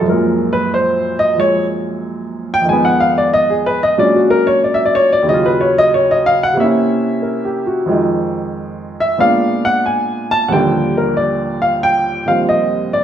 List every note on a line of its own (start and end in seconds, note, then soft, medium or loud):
0.01 2.64 F#2 medium
0.01 1.34 F3 soft
0.08 1.37 G#3 medium
0.08 0.51 A#4 medium
0.12 2.69 A#2 medium
0.53 0.71 B4 medium
0.74 1.16 C5 medium
1.19 1.37 D#5 medium
1.35 2.66 F3 soft
1.35 2.67 G#3 soft
1.40 1.65 C#5 medium
2.54 2.64 G5 loud
2.61 3.94 F2 medium
2.61 3.96 D#3 medium
2.69 3.96 G#3 medium
2.69 4.00 B3 medium
2.69 2.89 G#5 medium
2.85 3.08 F#5 medium
3.00 3.15 F5 medium
3.18 3.29 D5 medium
3.34 3.54 D#5 medium
3.50 3.74 G#4 medium
3.66 3.81 B4 medium
3.83 3.94 D#5 loud
3.97 5.27 A#2 soft
3.97 5.28 F#3 soft
3.97 5.28 G#3 soft
3.97 5.28 C#4 soft
3.97 5.28 D4 medium
3.97 4.20 D5 medium
4.16 4.39 F#4 medium
4.30 4.46 A#4 medium
4.47 4.59 C#5 medium
4.64 4.77 D5 medium
4.74 4.82 E5 medium
4.85 5.07 D5 medium
4.95 5.11 C#5 medium
5.13 5.24 D5 medium
5.23 6.55 D#2 medium
5.23 6.57 C#3 medium
5.29 6.59 F#3 soft
5.29 5.50 D#5 medium
5.33 6.61 F4 medium
5.46 5.69 B4 medium
5.61 5.76 C#5 medium
5.78 5.90 D#5 loud
5.94 6.15 C#5 medium
6.11 6.35 D#5 medium
6.26 6.41 F5 loud
6.43 6.55 F#5 loud
6.53 7.86 C3 medium
6.53 7.88 A#3 medium
6.60 7.90 C#4 medium
6.60 7.65 E5 medium
6.64 7.92 E4 medium
7.22 7.65 A#4 soft
7.45 7.79 G4 soft
7.67 8.01 F#4 medium
7.86 9.18 F2 medium
7.86 9.19 F3 medium
7.86 9.17 G#3 medium
7.91 9.20 D#3 medium
9.00 9.19 E5 medium
9.18 10.48 A#2 medium
9.18 10.50 G#3 soft
9.18 10.50 B3 medium
9.18 10.50 D4 medium
9.18 9.63 F5 loud
9.65 9.84 F#5 loud
9.86 10.29 G#5 medium
10.31 10.50 A5 loud
10.48 13.04 D#2 medium
10.48 12.24 A#2 medium
10.48 12.25 F3 medium
10.48 12.26 G3 medium
10.48 10.53 F#5 medium
10.52 13.04 D3 medium
10.52 13.04 A#3 medium
10.52 10.95 G5 medium
10.97 11.16 A#4 medium
11.17 11.60 D5 medium
11.62 11.81 F5 medium
11.83 12.25 G5 loud
12.26 13.04 A#2 soft
12.26 13.04 D#3 soft
12.26 13.04 F3 soft
12.26 13.04 G3 soft
12.26 13.04 C4 soft
12.26 12.46 F5 medium
12.49 12.91 D#5 medium
12.93 13.04 D5 medium